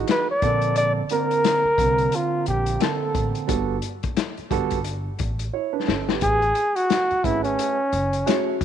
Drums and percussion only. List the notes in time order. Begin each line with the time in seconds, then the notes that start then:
0.08 snare, closed hi-hat
0.42 kick, closed hi-hat
0.61 closed hi-hat
0.76 closed hi-hat
1.09 closed hi-hat
1.31 closed hi-hat
1.44 snare, closed hi-hat
1.78 kick, closed hi-hat
1.98 closed hi-hat
2.12 closed hi-hat
2.46 closed hi-hat
2.66 closed hi-hat
2.80 snare, closed hi-hat
3.15 kick, closed hi-hat
3.35 closed hi-hat
3.49 kick, closed hi-hat
3.82 closed hi-hat
4.03 kick, closed hi-hat
4.17 snare, closed hi-hat
4.37 closed hi-hat
4.51 kick, closed hi-hat
4.70 kick, closed hi-hat
4.84 closed hi-hat
5.19 kick, closed hi-hat
5.39 closed hi-hat
5.88 snare
6.09 snare
6.21 kick, closed hi-hat
6.42 closed hi-hat
6.55 closed hi-hat
6.76 closed hi-hat
6.90 snare, closed hi-hat
7.11 closed hi-hat
7.24 kick, closed hi-hat
7.44 closed hi-hat
7.59 closed hi-hat
7.93 closed hi-hat
8.13 closed hi-hat
8.27 snare, closed hi-hat
8.61 kick, closed hi-hat